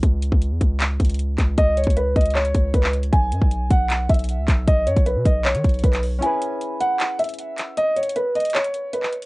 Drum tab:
HH |x-----------x-----------x-----------x-----------x-----------x--x--x--x--x-----------x-----------|x-----------x---x---x---x-----------x--x--x--x--x-----x-----x-----------x-----------x-----x-----|x-----------x-----------x-----------x-----------x-----------x--x--x--x--x-----------x-----------|x-----------x-----x-----x-----------x-----------x-----x-----x--x--x--x--x-----x-----o-----------|
CP |------------------------------------------------x-----------------------------------x-----------|------------------------------------------------x-----------------------------x-----------------|------------------------------------------------x-----------------------------------x-----------|------------------------------------------------x-----------------------------x-----------------|
BD |o-----------------o-----------------o-----------------------o-----------------------o-----------|o-----------------o-----------------o-----------------------o-----------o-----------------------|o-----------------o-----------------o-----------------------o-----------------------o-----------|o-----------------o-----------------o-----------------------o-----------o-----------------------|

HH |x-----------x-----------x-----------x-----------x-----------x--x--x--x--x-----------x-----------|x-----------x---x---x---x-----------x--x--x--x--x-----x-----x-----------x-----------x-----x-----|
CP |------------------------------------------------x-----------------------------------x-----------|------------------------------------------------x-----------------------------x-----------------|
BD |------------------------------------------------------------------------------------------------|------------------------------------------------------------------------------------------------|